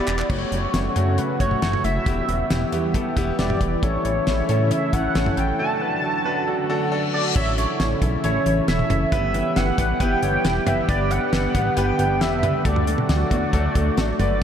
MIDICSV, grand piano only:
0, 0, Header, 1, 2, 480
1, 0, Start_track
1, 0, Tempo, 441176
1, 324, Time_signature, 4, 2, 24, 8
1, 15700, End_track
2, 0, Start_track
2, 0, Title_t, "Grand piano"
2, 0, Program_c, 0, 0
2, 84, Note_on_c, 0, 59, 85
2, 84, Note_on_c, 0, 64, 79
2, 84, Note_on_c, 0, 67, 98
2, 281, Note_off_c, 0, 59, 0
2, 281, Note_off_c, 0, 64, 0
2, 281, Note_off_c, 0, 67, 0
2, 323, Note_on_c, 0, 57, 90
2, 323, Note_on_c, 0, 66, 99
2, 324, Note_on_c, 0, 61, 85
2, 521, Note_off_c, 0, 57, 0
2, 521, Note_off_c, 0, 61, 0
2, 521, Note_off_c, 0, 66, 0
2, 564, Note_on_c, 0, 57, 75
2, 564, Note_on_c, 0, 61, 71
2, 564, Note_on_c, 0, 66, 84
2, 761, Note_off_c, 0, 57, 0
2, 761, Note_off_c, 0, 61, 0
2, 761, Note_off_c, 0, 66, 0
2, 803, Note_on_c, 0, 61, 67
2, 803, Note_on_c, 0, 66, 79
2, 804, Note_on_c, 0, 57, 74
2, 1001, Note_off_c, 0, 57, 0
2, 1001, Note_off_c, 0, 61, 0
2, 1001, Note_off_c, 0, 66, 0
2, 1043, Note_on_c, 0, 57, 90
2, 1043, Note_on_c, 0, 66, 98
2, 1044, Note_on_c, 0, 61, 82
2, 1241, Note_off_c, 0, 57, 0
2, 1241, Note_off_c, 0, 61, 0
2, 1241, Note_off_c, 0, 66, 0
2, 1284, Note_on_c, 0, 61, 67
2, 1284, Note_on_c, 0, 66, 82
2, 1285, Note_on_c, 0, 57, 73
2, 1481, Note_off_c, 0, 61, 0
2, 1481, Note_off_c, 0, 66, 0
2, 1482, Note_off_c, 0, 57, 0
2, 1523, Note_on_c, 0, 61, 85
2, 1524, Note_on_c, 0, 57, 94
2, 1524, Note_on_c, 0, 66, 108
2, 1721, Note_off_c, 0, 57, 0
2, 1721, Note_off_c, 0, 61, 0
2, 1721, Note_off_c, 0, 66, 0
2, 1764, Note_on_c, 0, 57, 98
2, 1764, Note_on_c, 0, 61, 88
2, 1764, Note_on_c, 0, 66, 105
2, 1961, Note_off_c, 0, 57, 0
2, 1961, Note_off_c, 0, 61, 0
2, 1961, Note_off_c, 0, 66, 0
2, 2004, Note_on_c, 0, 57, 72
2, 2004, Note_on_c, 0, 61, 68
2, 2004, Note_on_c, 0, 64, 82
2, 2201, Note_off_c, 0, 57, 0
2, 2201, Note_off_c, 0, 61, 0
2, 2201, Note_off_c, 0, 64, 0
2, 2244, Note_on_c, 0, 59, 92
2, 2245, Note_on_c, 0, 64, 87
2, 2245, Note_on_c, 0, 67, 100
2, 2441, Note_off_c, 0, 59, 0
2, 2441, Note_off_c, 0, 64, 0
2, 2441, Note_off_c, 0, 67, 0
2, 2484, Note_on_c, 0, 64, 68
2, 2485, Note_on_c, 0, 59, 75
2, 2485, Note_on_c, 0, 66, 83
2, 2681, Note_off_c, 0, 59, 0
2, 2681, Note_off_c, 0, 64, 0
2, 2681, Note_off_c, 0, 66, 0
2, 2724, Note_on_c, 0, 64, 81
2, 2725, Note_on_c, 0, 59, 86
2, 2725, Note_on_c, 0, 67, 97
2, 2921, Note_off_c, 0, 64, 0
2, 2922, Note_off_c, 0, 59, 0
2, 2922, Note_off_c, 0, 67, 0
2, 2964, Note_on_c, 0, 59, 90
2, 2964, Note_on_c, 0, 64, 79
2, 2964, Note_on_c, 0, 67, 97
2, 3161, Note_off_c, 0, 59, 0
2, 3161, Note_off_c, 0, 64, 0
2, 3161, Note_off_c, 0, 67, 0
2, 3205, Note_on_c, 0, 59, 89
2, 3205, Note_on_c, 0, 64, 79
2, 3206, Note_on_c, 0, 69, 98
2, 3402, Note_off_c, 0, 59, 0
2, 3402, Note_off_c, 0, 64, 0
2, 3402, Note_off_c, 0, 69, 0
2, 3445, Note_on_c, 0, 59, 115
2, 3445, Note_on_c, 0, 64, 105
2, 3445, Note_on_c, 0, 67, 121
2, 3642, Note_off_c, 0, 59, 0
2, 3642, Note_off_c, 0, 64, 0
2, 3642, Note_off_c, 0, 67, 0
2, 3686, Note_on_c, 0, 59, 100
2, 3686, Note_on_c, 0, 64, 87
2, 3686, Note_on_c, 0, 67, 106
2, 3882, Note_off_c, 0, 59, 0
2, 3882, Note_off_c, 0, 64, 0
2, 3882, Note_off_c, 0, 67, 0
2, 3925, Note_on_c, 0, 59, 74
2, 3926, Note_on_c, 0, 64, 70
2, 4122, Note_off_c, 0, 59, 0
2, 4122, Note_off_c, 0, 64, 0
2, 4165, Note_on_c, 0, 61, 91
2, 4165, Note_on_c, 0, 64, 85
2, 4165, Note_on_c, 0, 69, 105
2, 4362, Note_off_c, 0, 61, 0
2, 4362, Note_off_c, 0, 64, 0
2, 4362, Note_off_c, 0, 69, 0
2, 4405, Note_on_c, 0, 61, 78
2, 4405, Note_on_c, 0, 64, 69
2, 4405, Note_on_c, 0, 69, 83
2, 4601, Note_off_c, 0, 61, 0
2, 4601, Note_off_c, 0, 69, 0
2, 4602, Note_off_c, 0, 64, 0
2, 4646, Note_on_c, 0, 61, 77
2, 4646, Note_on_c, 0, 64, 68
2, 4646, Note_on_c, 0, 69, 84
2, 4842, Note_off_c, 0, 61, 0
2, 4842, Note_off_c, 0, 64, 0
2, 4842, Note_off_c, 0, 69, 0
2, 4886, Note_on_c, 0, 61, 90
2, 4886, Note_on_c, 0, 64, 86
2, 4886, Note_on_c, 0, 69, 101
2, 5082, Note_off_c, 0, 61, 0
2, 5082, Note_off_c, 0, 64, 0
2, 5082, Note_off_c, 0, 69, 0
2, 5125, Note_on_c, 0, 64, 69
2, 5125, Note_on_c, 0, 69, 82
2, 5126, Note_on_c, 0, 61, 75
2, 5322, Note_off_c, 0, 61, 0
2, 5322, Note_off_c, 0, 64, 0
2, 5322, Note_off_c, 0, 69, 0
2, 5365, Note_on_c, 0, 64, 88
2, 5365, Note_on_c, 0, 69, 104
2, 5366, Note_on_c, 0, 61, 97
2, 5562, Note_off_c, 0, 61, 0
2, 5562, Note_off_c, 0, 64, 0
2, 5562, Note_off_c, 0, 69, 0
2, 5605, Note_on_c, 0, 61, 99
2, 5605, Note_on_c, 0, 64, 91
2, 5605, Note_on_c, 0, 69, 113
2, 5802, Note_off_c, 0, 61, 0
2, 5802, Note_off_c, 0, 64, 0
2, 5802, Note_off_c, 0, 69, 0
2, 5845, Note_on_c, 0, 61, 76
2, 5845, Note_on_c, 0, 64, 69
2, 5845, Note_on_c, 0, 69, 86
2, 6041, Note_off_c, 0, 61, 0
2, 6041, Note_off_c, 0, 64, 0
2, 6041, Note_off_c, 0, 69, 0
2, 6084, Note_on_c, 0, 62, 92
2, 6084, Note_on_c, 0, 66, 88
2, 6084, Note_on_c, 0, 69, 102
2, 6281, Note_off_c, 0, 62, 0
2, 6281, Note_off_c, 0, 66, 0
2, 6281, Note_off_c, 0, 69, 0
2, 6325, Note_on_c, 0, 62, 77
2, 6325, Note_on_c, 0, 66, 70
2, 6325, Note_on_c, 0, 71, 85
2, 6521, Note_off_c, 0, 66, 0
2, 6522, Note_off_c, 0, 62, 0
2, 6522, Note_off_c, 0, 71, 0
2, 6565, Note_on_c, 0, 62, 76
2, 6565, Note_on_c, 0, 69, 84
2, 6566, Note_on_c, 0, 66, 72
2, 6762, Note_off_c, 0, 62, 0
2, 6762, Note_off_c, 0, 66, 0
2, 6762, Note_off_c, 0, 69, 0
2, 6805, Note_on_c, 0, 62, 90
2, 6805, Note_on_c, 0, 66, 86
2, 6805, Note_on_c, 0, 71, 104
2, 7002, Note_off_c, 0, 62, 0
2, 7002, Note_off_c, 0, 66, 0
2, 7002, Note_off_c, 0, 71, 0
2, 7045, Note_on_c, 0, 62, 92
2, 7045, Note_on_c, 0, 66, 84
2, 7045, Note_on_c, 0, 69, 100
2, 7241, Note_off_c, 0, 69, 0
2, 7242, Note_off_c, 0, 62, 0
2, 7242, Note_off_c, 0, 66, 0
2, 7285, Note_on_c, 0, 62, 119
2, 7285, Note_on_c, 0, 66, 105
2, 7286, Note_on_c, 0, 69, 127
2, 7482, Note_off_c, 0, 62, 0
2, 7482, Note_off_c, 0, 66, 0
2, 7482, Note_off_c, 0, 69, 0
2, 7525, Note_on_c, 0, 62, 120
2, 7525, Note_on_c, 0, 66, 109
2, 7525, Note_on_c, 0, 69, 126
2, 7722, Note_off_c, 0, 62, 0
2, 7722, Note_off_c, 0, 66, 0
2, 7722, Note_off_c, 0, 69, 0
2, 7765, Note_on_c, 0, 69, 98
2, 7766, Note_on_c, 0, 62, 89
2, 7766, Note_on_c, 0, 66, 84
2, 7962, Note_off_c, 0, 62, 0
2, 7962, Note_off_c, 0, 66, 0
2, 7962, Note_off_c, 0, 69, 0
2, 8006, Note_on_c, 0, 61, 94
2, 8006, Note_on_c, 0, 64, 86
2, 8006, Note_on_c, 0, 69, 84
2, 8006, Note_on_c, 0, 73, 105
2, 8202, Note_off_c, 0, 61, 0
2, 8202, Note_off_c, 0, 64, 0
2, 8202, Note_off_c, 0, 69, 0
2, 8202, Note_off_c, 0, 73, 0
2, 8245, Note_on_c, 0, 61, 78
2, 8246, Note_on_c, 0, 64, 72
2, 8246, Note_on_c, 0, 69, 70
2, 8246, Note_on_c, 0, 73, 87
2, 8442, Note_off_c, 0, 61, 0
2, 8442, Note_off_c, 0, 64, 0
2, 8442, Note_off_c, 0, 69, 0
2, 8442, Note_off_c, 0, 73, 0
2, 8486, Note_on_c, 0, 61, 76
2, 8486, Note_on_c, 0, 64, 70
2, 8486, Note_on_c, 0, 69, 69
2, 8486, Note_on_c, 0, 73, 85
2, 8682, Note_off_c, 0, 61, 0
2, 8682, Note_off_c, 0, 64, 0
2, 8682, Note_off_c, 0, 69, 0
2, 8682, Note_off_c, 0, 73, 0
2, 8726, Note_on_c, 0, 61, 79
2, 8726, Note_on_c, 0, 64, 71
2, 8726, Note_on_c, 0, 69, 71
2, 8726, Note_on_c, 0, 73, 84
2, 8922, Note_off_c, 0, 61, 0
2, 8922, Note_off_c, 0, 64, 0
2, 8922, Note_off_c, 0, 69, 0
2, 8922, Note_off_c, 0, 73, 0
2, 8964, Note_on_c, 0, 61, 99
2, 8964, Note_on_c, 0, 64, 89
2, 8964, Note_on_c, 0, 69, 90
2, 8964, Note_on_c, 0, 73, 111
2, 9161, Note_off_c, 0, 61, 0
2, 9161, Note_off_c, 0, 64, 0
2, 9161, Note_off_c, 0, 69, 0
2, 9161, Note_off_c, 0, 73, 0
2, 9204, Note_on_c, 0, 64, 70
2, 9204, Note_on_c, 0, 69, 68
2, 9205, Note_on_c, 0, 61, 77
2, 9205, Note_on_c, 0, 73, 86
2, 9401, Note_off_c, 0, 64, 0
2, 9401, Note_off_c, 0, 69, 0
2, 9402, Note_off_c, 0, 61, 0
2, 9402, Note_off_c, 0, 73, 0
2, 9444, Note_on_c, 0, 61, 78
2, 9445, Note_on_c, 0, 64, 70
2, 9445, Note_on_c, 0, 69, 72
2, 9445, Note_on_c, 0, 73, 88
2, 9641, Note_off_c, 0, 61, 0
2, 9641, Note_off_c, 0, 69, 0
2, 9641, Note_off_c, 0, 73, 0
2, 9642, Note_off_c, 0, 64, 0
2, 9685, Note_on_c, 0, 61, 77
2, 9685, Note_on_c, 0, 69, 70
2, 9685, Note_on_c, 0, 73, 86
2, 9686, Note_on_c, 0, 64, 70
2, 9882, Note_off_c, 0, 61, 0
2, 9882, Note_off_c, 0, 64, 0
2, 9882, Note_off_c, 0, 69, 0
2, 9882, Note_off_c, 0, 73, 0
2, 9924, Note_on_c, 0, 64, 87
2, 9925, Note_on_c, 0, 59, 99
2, 9925, Note_on_c, 0, 67, 86
2, 9925, Note_on_c, 0, 71, 110
2, 10121, Note_off_c, 0, 59, 0
2, 10121, Note_off_c, 0, 64, 0
2, 10122, Note_off_c, 0, 67, 0
2, 10122, Note_off_c, 0, 71, 0
2, 10164, Note_on_c, 0, 71, 87
2, 10165, Note_on_c, 0, 59, 80
2, 10165, Note_on_c, 0, 64, 74
2, 10165, Note_on_c, 0, 67, 74
2, 10361, Note_off_c, 0, 59, 0
2, 10361, Note_off_c, 0, 64, 0
2, 10361, Note_off_c, 0, 71, 0
2, 10362, Note_off_c, 0, 67, 0
2, 10405, Note_on_c, 0, 59, 76
2, 10405, Note_on_c, 0, 64, 72
2, 10405, Note_on_c, 0, 67, 70
2, 10405, Note_on_c, 0, 71, 83
2, 10601, Note_off_c, 0, 67, 0
2, 10602, Note_off_c, 0, 59, 0
2, 10602, Note_off_c, 0, 64, 0
2, 10602, Note_off_c, 0, 71, 0
2, 10646, Note_on_c, 0, 59, 75
2, 10646, Note_on_c, 0, 64, 74
2, 10646, Note_on_c, 0, 67, 72
2, 10646, Note_on_c, 0, 71, 85
2, 10842, Note_off_c, 0, 59, 0
2, 10842, Note_off_c, 0, 64, 0
2, 10842, Note_off_c, 0, 67, 0
2, 10842, Note_off_c, 0, 71, 0
2, 10886, Note_on_c, 0, 59, 101
2, 10886, Note_on_c, 0, 64, 93
2, 10886, Note_on_c, 0, 67, 93
2, 10886, Note_on_c, 0, 71, 112
2, 11082, Note_off_c, 0, 59, 0
2, 11082, Note_off_c, 0, 64, 0
2, 11082, Note_off_c, 0, 67, 0
2, 11082, Note_off_c, 0, 71, 0
2, 11126, Note_on_c, 0, 59, 76
2, 11126, Note_on_c, 0, 64, 71
2, 11126, Note_on_c, 0, 67, 73
2, 11126, Note_on_c, 0, 73, 89
2, 11322, Note_off_c, 0, 59, 0
2, 11322, Note_off_c, 0, 64, 0
2, 11322, Note_off_c, 0, 67, 0
2, 11322, Note_off_c, 0, 73, 0
2, 11365, Note_on_c, 0, 67, 71
2, 11366, Note_on_c, 0, 59, 78
2, 11366, Note_on_c, 0, 64, 72
2, 11366, Note_on_c, 0, 71, 89
2, 11562, Note_off_c, 0, 59, 0
2, 11562, Note_off_c, 0, 64, 0
2, 11562, Note_off_c, 0, 67, 0
2, 11562, Note_off_c, 0, 71, 0
2, 11606, Note_on_c, 0, 59, 79
2, 11606, Note_on_c, 0, 64, 72
2, 11606, Note_on_c, 0, 67, 70
2, 11606, Note_on_c, 0, 71, 86
2, 11802, Note_off_c, 0, 59, 0
2, 11802, Note_off_c, 0, 64, 0
2, 11802, Note_off_c, 0, 67, 0
2, 11802, Note_off_c, 0, 71, 0
2, 11845, Note_on_c, 0, 59, 97
2, 11846, Note_on_c, 0, 62, 92
2, 11846, Note_on_c, 0, 67, 93
2, 11846, Note_on_c, 0, 71, 106
2, 12042, Note_off_c, 0, 59, 0
2, 12042, Note_off_c, 0, 62, 0
2, 12042, Note_off_c, 0, 67, 0
2, 12042, Note_off_c, 0, 71, 0
2, 12086, Note_on_c, 0, 62, 74
2, 12086, Note_on_c, 0, 74, 87
2, 12087, Note_on_c, 0, 59, 81
2, 12087, Note_on_c, 0, 67, 71
2, 12282, Note_off_c, 0, 62, 0
2, 12282, Note_off_c, 0, 74, 0
2, 12283, Note_off_c, 0, 59, 0
2, 12283, Note_off_c, 0, 67, 0
2, 12326, Note_on_c, 0, 59, 75
2, 12327, Note_on_c, 0, 62, 73
2, 12327, Note_on_c, 0, 67, 68
2, 12327, Note_on_c, 0, 71, 82
2, 12522, Note_off_c, 0, 59, 0
2, 12523, Note_off_c, 0, 62, 0
2, 12523, Note_off_c, 0, 67, 0
2, 12523, Note_off_c, 0, 71, 0
2, 12566, Note_on_c, 0, 62, 72
2, 12566, Note_on_c, 0, 71, 85
2, 12567, Note_on_c, 0, 59, 78
2, 12567, Note_on_c, 0, 67, 72
2, 12762, Note_off_c, 0, 62, 0
2, 12762, Note_off_c, 0, 67, 0
2, 12762, Note_off_c, 0, 71, 0
2, 12763, Note_off_c, 0, 59, 0
2, 12805, Note_on_c, 0, 67, 92
2, 12805, Note_on_c, 0, 71, 110
2, 12806, Note_on_c, 0, 59, 98
2, 12806, Note_on_c, 0, 62, 91
2, 13002, Note_off_c, 0, 59, 0
2, 13002, Note_off_c, 0, 62, 0
2, 13002, Note_off_c, 0, 67, 0
2, 13002, Note_off_c, 0, 71, 0
2, 13046, Note_on_c, 0, 59, 75
2, 13046, Note_on_c, 0, 62, 72
2, 13046, Note_on_c, 0, 71, 85
2, 13047, Note_on_c, 0, 67, 74
2, 13242, Note_off_c, 0, 59, 0
2, 13242, Note_off_c, 0, 62, 0
2, 13242, Note_off_c, 0, 67, 0
2, 13242, Note_off_c, 0, 71, 0
2, 13286, Note_on_c, 0, 59, 79
2, 13286, Note_on_c, 0, 62, 72
2, 13286, Note_on_c, 0, 71, 87
2, 13287, Note_on_c, 0, 67, 72
2, 13482, Note_off_c, 0, 59, 0
2, 13482, Note_off_c, 0, 62, 0
2, 13482, Note_off_c, 0, 71, 0
2, 13483, Note_off_c, 0, 67, 0
2, 13526, Note_on_c, 0, 62, 71
2, 13526, Note_on_c, 0, 67, 72
2, 13526, Note_on_c, 0, 71, 85
2, 13527, Note_on_c, 0, 59, 76
2, 13722, Note_off_c, 0, 59, 0
2, 13722, Note_off_c, 0, 62, 0
2, 13722, Note_off_c, 0, 67, 0
2, 13722, Note_off_c, 0, 71, 0
2, 13766, Note_on_c, 0, 57, 97
2, 13766, Note_on_c, 0, 62, 89
2, 13766, Note_on_c, 0, 66, 86
2, 13766, Note_on_c, 0, 69, 105
2, 13962, Note_off_c, 0, 57, 0
2, 13962, Note_off_c, 0, 62, 0
2, 13962, Note_off_c, 0, 66, 0
2, 13962, Note_off_c, 0, 69, 0
2, 14006, Note_on_c, 0, 57, 77
2, 14006, Note_on_c, 0, 62, 72
2, 14006, Note_on_c, 0, 66, 74
2, 14006, Note_on_c, 0, 69, 86
2, 14202, Note_off_c, 0, 57, 0
2, 14202, Note_off_c, 0, 62, 0
2, 14202, Note_off_c, 0, 66, 0
2, 14202, Note_off_c, 0, 69, 0
2, 14247, Note_on_c, 0, 57, 76
2, 14247, Note_on_c, 0, 62, 72
2, 14247, Note_on_c, 0, 66, 70
2, 14247, Note_on_c, 0, 69, 87
2, 14443, Note_off_c, 0, 57, 0
2, 14443, Note_off_c, 0, 62, 0
2, 14443, Note_off_c, 0, 66, 0
2, 14443, Note_off_c, 0, 69, 0
2, 14486, Note_on_c, 0, 57, 77
2, 14487, Note_on_c, 0, 62, 70
2, 14487, Note_on_c, 0, 66, 71
2, 14487, Note_on_c, 0, 69, 85
2, 14682, Note_off_c, 0, 57, 0
2, 14682, Note_off_c, 0, 62, 0
2, 14682, Note_off_c, 0, 66, 0
2, 14682, Note_off_c, 0, 69, 0
2, 14727, Note_on_c, 0, 57, 102
2, 14727, Note_on_c, 0, 62, 93
2, 14727, Note_on_c, 0, 66, 91
2, 14727, Note_on_c, 0, 69, 109
2, 14922, Note_off_c, 0, 62, 0
2, 14922, Note_off_c, 0, 66, 0
2, 14923, Note_off_c, 0, 57, 0
2, 14923, Note_off_c, 0, 69, 0
2, 14966, Note_on_c, 0, 57, 91
2, 14966, Note_on_c, 0, 62, 82
2, 14966, Note_on_c, 0, 66, 82
2, 14966, Note_on_c, 0, 69, 104
2, 15162, Note_off_c, 0, 57, 0
2, 15162, Note_off_c, 0, 62, 0
2, 15162, Note_off_c, 0, 66, 0
2, 15162, Note_off_c, 0, 69, 0
2, 15205, Note_on_c, 0, 66, 85
2, 15205, Note_on_c, 0, 69, 101
2, 15206, Note_on_c, 0, 57, 95
2, 15206, Note_on_c, 0, 62, 85
2, 15402, Note_off_c, 0, 57, 0
2, 15402, Note_off_c, 0, 62, 0
2, 15402, Note_off_c, 0, 66, 0
2, 15402, Note_off_c, 0, 69, 0
2, 15447, Note_on_c, 0, 57, 77
2, 15447, Note_on_c, 0, 62, 71
2, 15447, Note_on_c, 0, 66, 71
2, 15447, Note_on_c, 0, 71, 86
2, 15643, Note_off_c, 0, 57, 0
2, 15643, Note_off_c, 0, 62, 0
2, 15643, Note_off_c, 0, 66, 0
2, 15643, Note_off_c, 0, 71, 0
2, 15700, End_track
0, 0, End_of_file